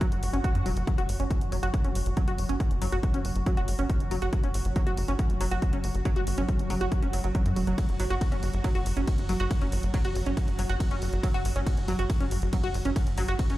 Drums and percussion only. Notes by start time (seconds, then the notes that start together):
0.01 kick, closed hi-hat
0.12 closed hi-hat
0.23 open hi-hat
0.34 closed hi-hat
0.44 kick, closed hi-hat
0.55 closed hi-hat
0.66 open hi-hat
0.77 closed hi-hat
0.87 kick, closed hi-hat
0.98 closed hi-hat
1.09 open hi-hat
1.20 closed hi-hat
1.31 kick, closed hi-hat
1.41 closed hi-hat
1.52 open hi-hat
1.63 closed hi-hat
1.74 kick, closed hi-hat
1.85 closed hi-hat
1.95 open hi-hat
2.06 closed hi-hat
2.17 kick, closed hi-hat
2.28 closed hi-hat
2.38 open hi-hat
2.49 closed hi-hat
2.60 kick, closed hi-hat
2.71 closed hi-hat
2.82 open hi-hat
2.92 closed hi-hat
3.03 kick, closed hi-hat
3.14 closed hi-hat
3.25 open hi-hat
3.36 closed hi-hat
3.46 kick, closed hi-hat
3.57 closed hi-hat
3.68 open hi-hat
3.79 closed hi-hat
3.90 kick, closed hi-hat
4.00 closed hi-hat
4.11 open hi-hat
4.22 closed hi-hat
4.33 kick, closed hi-hat
4.44 closed hi-hat
4.54 open hi-hat
4.65 closed hi-hat
4.76 kick, closed hi-hat
4.87 closed hi-hat
4.97 open hi-hat
5.08 closed hi-hat
5.19 kick, closed hi-hat
5.30 closed hi-hat
5.41 open hi-hat
5.51 closed hi-hat
5.62 kick, closed hi-hat
5.73 closed hi-hat
5.84 open hi-hat
5.95 closed hi-hat
6.05 kick, closed hi-hat
6.16 closed hi-hat
6.27 open hi-hat
6.38 closed hi-hat
6.49 kick, closed hi-hat
6.59 closed hi-hat
6.70 open hi-hat
6.81 closed hi-hat
6.92 kick, closed hi-hat
7.03 closed hi-hat
7.13 open hi-hat
7.24 closed hi-hat
7.35 kick, closed hi-hat
7.46 closed hi-hat
7.56 open hi-hat
7.67 closed hi-hat
7.78 kick, closed hi-hat, ride
7.89 closed hi-hat
8.00 open hi-hat
8.10 closed hi-hat
8.21 kick, closed hi-hat, ride
8.32 closed hi-hat
8.43 open hi-hat
8.53 closed hi-hat
8.64 kick, closed hi-hat, ride
8.75 closed hi-hat
8.86 open hi-hat
8.97 closed hi-hat
9.07 kick, closed hi-hat, ride
9.18 closed hi-hat
9.29 open hi-hat
9.40 closed hi-hat
9.51 kick, closed hi-hat, ride
9.61 closed hi-hat
9.72 open hi-hat
9.83 closed hi-hat
9.94 kick, closed hi-hat, ride
10.05 closed hi-hat
10.15 open hi-hat
10.26 closed hi-hat
10.37 kick, closed hi-hat, ride
10.48 closed hi-hat
10.59 open hi-hat
10.70 closed hi-hat
10.80 kick, closed hi-hat, ride
10.91 closed hi-hat
11.02 open hi-hat
11.13 closed hi-hat
11.23 kick, closed hi-hat, ride
11.34 closed hi-hat
11.45 open hi-hat
11.56 closed hi-hat
11.66 kick, closed hi-hat, ride
11.77 closed hi-hat
11.88 open hi-hat
11.99 closed hi-hat
12.10 kick, closed hi-hat, ride
12.21 closed hi-hat
12.31 open hi-hat
12.42 closed hi-hat
12.53 kick, closed hi-hat, ride
12.64 closed hi-hat
12.74 open hi-hat
12.85 closed hi-hat
12.96 kick, closed hi-hat, ride
13.07 closed hi-hat
13.18 open hi-hat
13.28 closed hi-hat
13.39 kick, closed hi-hat, ride
13.50 closed hi-hat